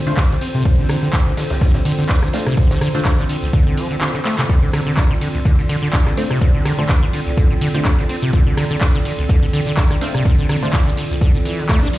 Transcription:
Already playing: C4 F4 A4 C5
0.06 D3 A3 D4 F4 C5, ride, cabasa
0.17 D4, kick, snare, clap, ride, cabasa
0.30 D3, snare, cabasa
0.41 C4, open hi-hat, ride, cabasa
0.55 C3, cabasa
0.65 D3, kick, ride, cabasa
0.79 D3
0.89 D3, cross-stick, open hi-hat, ride, cabasa
1.03 D3, cabasa
1.13 D4, kick, snare, clap, ride, cabasa
1.27 D3
1.37 D3, snare, open hi-hat, ride, cabasa
1.50 D2, snare, ride, cabasa
1.61 D3, kick, snare, ride, cabasa
1.74 D3, snare, ride, cabasa
1.85 D3, open hi-hat, ride, cabasa
1.98 D3, ride, cabasa
2.09 D4, kick, snare, clap, ride, cabasa
2.23 D3, cross-stick, snare, cabasa
2.33 A3 C4 D4 F4 C5, snare, open hi-hat, ride, cabasa
2.47 C3, cross-stick, snare, cabasa
2.57 D3, kick, ride, cabasa
2.71 D3, snare, ride, cabasa
2.81 D3, cross-stick, snare, open hi-hat, ride, cabasa
2.95 D3 A3 D4 F4 C5, ride, cabasa
3.05 D4, kick, snare, clap, ride, cabasa
3.19 D3, snare, cabasa
3.29 D3, open hi-hat, ride, cabasa
3.43 D2, cabasa
3.53 D3, kick, ride, cabasa
3.67 D3, cabasa
3.77 F3, open hi-hat, ride, cabasa
3.90 D3, ride, cabasa
4.01 D3, snare, clap, ride, cabasa
4.14 D3, snare, cabasa
4.25 A3, clap, open hi-hat, ride, cabasa
4.39 C3, clap, cabasa
4.49 D3 D5, kick, ride, cabasa
4.63 D3
4.73 D3, cross-stick, open hi-hat, ride, cabasa
4.87 D3, cabasa
4.97 D4, kick, snare, clap, ride, cabasa
5.11 D3
5.21 D3, open hi-hat, ride, cabasa
5.35 D2, ride, cabasa
5.45 D3, kick, ride, cabasa
5.59 D3, cabasa
5.69 D3, open hi-hat, ride, cabasa
5.82 D3, ride, cabasa
5.93 D4, kick, snare, clap, ride, cabasa
6.06 D3, cross-stick, snare, cabasa
6.17 A3 C4 D4 F4 C5, open hi-hat, ride, cabasa
6.31 C3, cross-stick, cabasa
6.41 D3, kick, ride, cabasa
6.55 D3
6.65 D3, cross-stick, snare, open hi-hat, ride, cabasa
6.79 D3 A3 D4 F4 C5, cabasa
6.89 D4, kick, snare, clap, ride, cabasa
7.03 D3
7.13 D3, open hi-hat, ride, cabasa
7.27 D2, cabasa
7.37 D3, kick, ride, cabasa
7.51 D3, cabasa
7.61 D3, open hi-hat, ride, cabasa
7.75 D3 A3 D4 F4 C5, ride, cabasa
7.85 D4, kick, snare, clap, ride, cabasa
7.98 D3, snare, cabasa
8.09 C4, open hi-hat, ride, cabasa
8.22 C3, cabasa
8.33 D3, kick, ride, cabasa
8.47 D3
8.57 D3, cross-stick, open hi-hat, ride, cabasa
8.71 D3, cabasa
8.81 D4, kick, snare, clap, ride, cabasa
8.95 D3
9.05 D3, open hi-hat, ride, cabasa
9.19 D2, ride, cabasa
9.29 D3, kick, ride, cabasa
9.43 D3, cabasa
9.53 D3, open hi-hat, ride, cabasa
9.67 D3, ride, cabasa
9.77 D4, kick, snare, clap, ride, cabasa
9.90 D3, cross-stick, snare, cabasa
10.01 A3 C4 D4 F4 C5, open hi-hat, ride, cabasa
10.15 C3, cross-stick, cabasa
10.25 D3, kick, ride, cabasa
10.39 D3
10.49 D3, cross-stick, snare, open hi-hat, ride, cabasa
10.62 D3 A3 D4 F4 C5, cabasa
10.72 D4, kick, snare, clap, ride, cabasa
10.87 D3
10.97 D3, open hi-hat, ride, cabasa
11.11 D2, cabasa
11.21 D3, kick, ride, cabasa
11.35 D3, cabasa
11.45 E3, open hi-hat, ride, cabasa
11.59 D3, ride, cabasa
11.69 A3, kick, snare, clap, ride, cabasa
11.82 D4, snare, cabasa
11.93 F3, open hi-hat, ride, cabasa

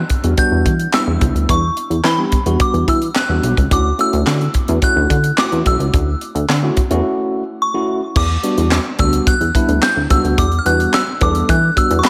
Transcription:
Already playing: F#6
0.10 kick, closed hi-hat
0.24 E2 G3 B3 D4 F#4, closed hi-hat
0.38 G3 B3 D4 F#4 G6, kick, closed hi-hat
0.52 E2
0.66 E3, kick, closed hi-hat
0.79 closed hi-hat
0.93 G3 B3 D4 E4 E6, snare, clap
1.07 E2
1.21 C#2, kick, closed hi-hat
1.35 D2, closed hi-hat
1.49 E2 C#6, kick, closed hi-hat
1.77 closed hi-hat
1.90 E2, closed hi-hat
2.04 E3 B5, snare, clap
2.18 G3 B3 D4 G4
2.32 kick, closed hi-hat
2.46 E2 G3 B3 D4 F#4, closed hi-hat
2.60 D6, kick, closed hi-hat
2.74 E2, closed hi-hat
2.88 E3 E6, kick, closed hi-hat
3.02 closed hi-hat
3.15 F#6, snare, clap
3.29 E2 G3 B3 D4 F#4
3.43 B1, closed hi-hat
3.57 C#2, kick, closed hi-hat
3.71 D2 A3 C#4 E4 F#4 D6, kick, closed hi-hat
3.99 A3 C#4 E4 F#4 E6, closed hi-hat
4.13 D2, closed hi-hat
4.27 D3, snare, clap
4.41 closed hi-hat
4.54 kick, closed hi-hat
4.68 E2 A3 C#4 E4 F#4, closed hi-hat
4.82 A3 C#4 E4 F#4 F#6, kick, closed hi-hat
4.96 D2
5.10 D3, kick, closed hi-hat
5.24 closed hi-hat
5.38 A3 C#4 E4 F#4 D6, snare, clap
5.52 E2, closed hi-hat
5.66 B1 E6, kick, closed hi-hat
5.79 C#2, closed hi-hat
5.94 D2, kick, closed hi-hat
6.21 closed hi-hat
6.35 D2, closed hi-hat
6.49 D3, snare, clap
6.63 A3 C#4 E4 F#4
6.77 kick, closed hi-hat
6.90 E2 A3 C#4 E4 F#4, closed hi-hat
7.62 C#6
7.74 A3 C#4 E4 F#4
8.16 E2 D6, kick, crash
8.43 G3 B3 D4 F#4, closed hi-hat
8.58 E2, closed hi-hat
8.71 snare, clap
8.99 D2 G3 B3 D4 F#4 E6, kick, closed hi-hat
9.13 closed hi-hat
9.27 F#6, kick, closed hi-hat
9.41 E2, closed hi-hat
9.55 G3 B3 D4 E4, kick, closed hi-hat
9.68 D2, closed hi-hat
9.82 G6, snare, clap
9.97 D2
10.10 C#2 G3 B3 D4 F#4 E6, kick, closed hi-hat
10.24 D2, closed hi-hat
10.38 E2 D6, kick, closed hi-hat
10.52 closed hi-hat
10.59 F6
10.65 E2 G3 B3 D4 F#4 F#6, closed hi-hat
10.80 closed hi-hat
10.94 E6, snare, clap
11.21 E2 G3 B3 D4 A4 D6, kick, closed hi-hat
11.35 closed hi-hat
11.49 E3 F#6, kick, closed hi-hat
11.76 G3 B3 D4 F#4 E6, kick, closed hi-hat
11.91 E2, closed hi-hat
11.99 C#6
12.04 B5, snare, clap

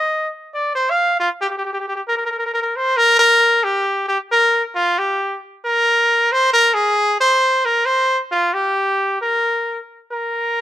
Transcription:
Already playing: D#5
0.54 D5
0.75 C5
0.90 F5
1.20 F4
1.42 G4
1.50 G4
1.57 G4
1.65 G4
1.73 G4
1.80 G4
1.88 G4
1.96 G4
2.08 A#4
2.17 A#4
2.25 A#4
2.31 A#4
2.39 A#4
2.46 A#4
2.54 A#4
2.63 A#4
2.76 C5
2.97 A#4
3.19 A#4
3.64 G4
4.08 G4
4.32 A#4
4.75 F4
4.99 G4
5.65 A#4
6.32 C5
6.53 A#4
6.74 G#4
7.20 C5
7.65 A#4
7.86 C5
8.31 F4
8.54 G4
9.22 A#4
10.12 A#4

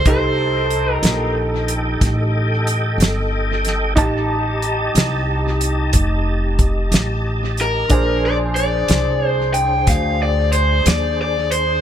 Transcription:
0.05 C2 D#4 G4 A4 C5 D#5 G5, kick, closed hi-hat
0.09 A4
0.70 closed hi-hat
0.94 A#4
1.03 A#1, snare, closed hi-hat
1.68 closed hi-hat
2.01 A1, kick, snare, closed hi-hat
2.67 closed hi-hat
2.98 G1, closed hi-hat
3.02 snare
3.65 snare, closed hi-hat
3.95 A1 D#4 G4 D#5 A5, kick, closed hi-hat
4.62 closed hi-hat
4.95 C2, snare, closed hi-hat
5.61 closed hi-hat
5.93 F1, kick, closed hi-hat
6.59 kick, closed hi-hat
6.92 A1, snare, closed hi-hat
7.57 A#4, closed hi-hat
7.88 A#1 D4 G#4 C5, kick, closed hi-hat
7.93 C5
8.26 D5
8.56 D5, closed hi-hat
8.88 C2, snare, closed hi-hat
9.28 C5
9.54 G5, closed hi-hat
9.87 D2 F5, kick, snare, closed hi-hat
10.23 D5
10.52 C5, closed hi-hat
10.86 D#2 D5, snare, closed hi-hat
11.21 D5
11.52 C5, closed hi-hat

